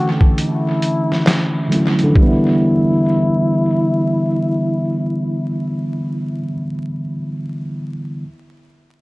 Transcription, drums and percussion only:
0.21 kick medium
0.38 closed hi-hat medium
0.82 closed hi-hat medium
1.12 snare soft
1.27 snare medium
1.27 clap medium
1.27 closed hi-hat medium
1.72 closed hi-hat medium
1.99 closed hi-hat soft
2.16 kick loud

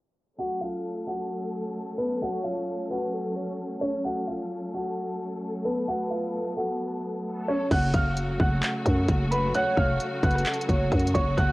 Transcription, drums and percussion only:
7.71 kick loud
7.71 closed hi-hat medium
7.71 crash loud
7.94 kick loud
7.94 closed hi-hat medium
8.17 closed hi-hat medium
8.40 kick loud
8.63 clap loud
8.63 closed hi-hat medium
8.86 kick medium
8.86 closed hi-hat medium
9.08 kick loud
9.08 closed hi-hat medium
9.32 closed hi-hat medium
9.54 closed hi-hat medium
9.77 kick loud
10.00 closed hi-hat medium
10.23 kick loud
10.23 closed hi-hat medium
10.31 closed hi-hat medium
10.35 cross-stick medium
10.35 closed hi-hat medium
10.46 clap loud
10.46 closed hi-hat medium
10.54 closed hi-hat medium
10.61 closed hi-hat medium
10.69 kick medium
10.69 closed hi-hat medium
10.92 kick medium
10.92 closed hi-hat soft
10.99 closed hi-hat medium
11.07 closed hi-hat medium
11.15 kick loud
11.15 closed hi-hat medium
11.38 kick loud
11.38 closed hi-hat medium

